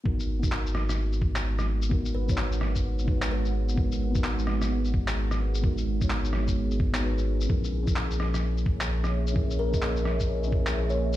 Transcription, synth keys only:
X:1
M:4/4
L:1/16
Q:"Swing 16ths" 1/4=129
K:G#m
V:1 name="Synth keys"
[B,DFA]3 [B,DFA]12- [B,DFA] | [B,DFA]3 [B,DFc] z6 [B,DFB]6 | [B,DFA]3 [B,DFA]12- [B,DFA] | [B,DFA]3 [B,DFc] z6 z [B,DFc] [B,DFB]4 |
[CEGA]3 [CEGA]12- [CEGA] | [CEGA]3 [CEGd] z6 [CEGA]6 |]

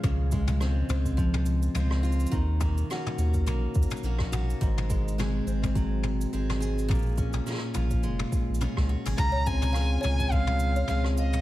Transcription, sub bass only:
X:1
M:4/4
L:1/16
Q:"Swing 16ths" 1/4=105
K:Db
V:1 name="Sub bass" clef=bass
D,,4- D,, z D,,4- D,, z D,,3 z | E,,3 z3 E,,2 B,,, z E,, z B,,,3 z | A,,,4- A,,, z A,,,4- A,,, z A,,,4 | B,,,3 z3 B,,,2 F,,, z2 B,,, z D,, z A,,, |
D,,4- D,, z D,,4- D,, z D,,4 |]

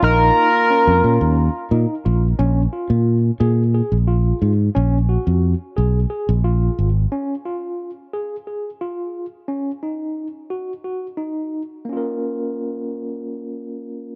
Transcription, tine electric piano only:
X:1
M:7/8
L:1/8
Q:1/4=89
K:Bbm
V:1 name="Tine electric piano"
E2 D D2 E F | D F2 A A F2 | D G2 A A F2 | D F2 A A F2 |
D E2 G G E2 | [B,DFB]6- [B,DFB] |]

